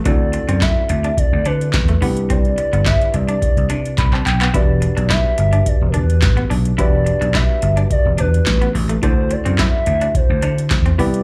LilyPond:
<<
  \new Staff \with { instrumentName = "Soft synth lead" } { \time 4/4 \key d \mixolydian \tempo 4 = 107 d''4 e''8 e''8 d''8 b'4 r8 | d''4 e''8 d''2 r8 | d''4 e''8 e''8 d''16. ais'32 b'4 r8 | d''4 e''8 e''8 d''8 b'4 r8 |
c''8 d''8 e''4 c''4. r8 | }
  \new Staff \with { instrumentName = "Tine electric piano" } { \time 4/4 \key d \mixolydian << { r1 | r2. b''16 a''16 g''8 | r1 | r1 |
r1 | } \\ { <c' e' fis' a'>2.~ <c' e' fis' a'>8 <d' e' g' b'>8~ | <d' e' g' b'>2.~ <d' e' g' b'>8 r8 | <d' fis' g' b'>1 | <d' fis' g' b'>1 |
<e' fis' a' c''>2.~ <e' fis' a' c''>8 <e' g' b' d''>8 | } >> }
  \new Staff \with { instrumentName = "Clean electric guitar" } { \time 4/4 \key d \mixolydian d'16 r8 c'16 e'16 r8 d'16 r8 d'16 r8 a16 b16 r16 | c'16 r8 b16 e'16 r8 d'16 r8 d'16 r8 c'16 r16 b16 | e'16 r8 d'16 e'16 r8 d'16 r8 d'16 r8 b16 d'16 r16 | e'16 r8 d'16 e'16 r8 d'16 r8 d'16 r8 b16 r16 a16 |
d'16 r8 c'16 e'16 r8 d'16 r8 d'16 r8 c'16 b16 r16 | }
  \new Staff \with { instrumentName = "Slap bass" } { \clef bass \time 4/4 \key d \mixolydian d,8. fis,8 r16 d,8 r16 d,16 d8 e,8 c,8~ | c,8. g,,8 r16 c,8 r16 c,16 c8 c,8 b,,8 | e,,8. b,,8 r16 g,,8 r16 e,,16 e,8 a,,8 b,,8 | e,,8. b,,8 r16 g,,8 r16 e,,16 e,8 a,,8 a,,8 |
d,8. fis,8 r16 d,8 r16 d,16 d8 e,8 c,8 | }
  \new DrumStaff \with { instrumentName = "Drums" } \drummode { \time 4/4 <hh bd>8 hh16 hh16 <hc hh bd sn>8 hh16 hh16 <hh bd>8 hh16 hh16 <hc hh bd sn>16 hh16 hho16 hh16 | <hh bd>16 hh16 hh16 hh16 <hc hh bd sn>16 hh16 hh16 hh16 <hh bd>16 hh16 hh16 hh16 <hc hh bd>16 hc16 <hc hh>16 <hc hh>16 | <hh bd>8 hh16 hh16 <hc hh bd sn>8 hh16 hh16 <hh bd>8 hh16 hh16 <hc hh bd sn>16 hh16 hho16 hh16 | <hh bd>8 hh16 hh16 <hc hh bd sn>8 hh16 hh16 <hh bd>8 hh16 hh16 <hc hh bd sn>16 hh16 hho16 hh16 |
<hh bd>8 hh16 hh16 <hc hh bd sn>8 hh16 hh16 <hh bd>8 hh16 hh16 <hc hh bd sn>16 hh16 hho16 hh16 | }
>>